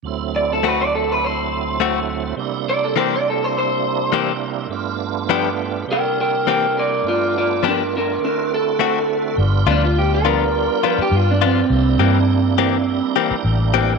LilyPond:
<<
  \new Staff \with { instrumentName = "Clean electric guitar" } { \time 4/4 \key d \dorian \tempo 4 = 103 r8 d''16 a'16 b'16 d''16 a'16 b'16 c''4 r4 | r8 d''16 a'16 c''16 d''16 a'16 c''16 c''4 r4 | r2 <bes' g''>8 <bes' g''>8 <bes' g''>8 <bes' d''>8 | <f' d''>8 <f' d''>8 <d' bes'>8 <d' bes'>8 <d' bes'>8 a'4. |
r8 d'16 f'16 g'16 bes'4. g'16 f'16 d'16 c'8~ | c'2~ c'8 r4. | }
  \new Staff \with { instrumentName = "Clean electric guitar" } { \time 4/4 \key d \dorian r4 <a c' fis'>8 r4. <a c' fis'>8 r8 | r4 <e bes c' g'>8 r4. <e bes c' g'>8 r8 | r4 <f b d' g'>8 r4. <e bes c' g'>8 r8 | r4 <f b d' g'>8 r4. <a c' fis'>8 r8 |
r8 <f b d' f'>8 r8 <f b d' f'>8 r8 <f b d' f'>8 r8 <f b d' f'>8 | r8 <e bes c' g'>8 r8 <e bes c' g'>8 r8 <e bes c' g'>8 r8 <e bes c' g'>8 | }
  \new Staff \with { instrumentName = "Tonewheel organ" } { \time 4/4 \key d \dorian <d, fis a c' e'>1 | <c g bes d' e'>1 | <g, a b d' f'>2 <c g bes d' e'>2 | <g, a b d' f'>2 <d a c' e' fis'>2 |
<g b d' f'>1 | <g bes d' e'>1 | }
  \new Staff \with { instrumentName = "Fingered electric bass" } { \clef bass \time 4/4 \key d \dorian r1 | r1 | r1 | r1 |
g,,8 d,2 r8 g,4 | c,8 g,2 r8 a,,4 | }
>>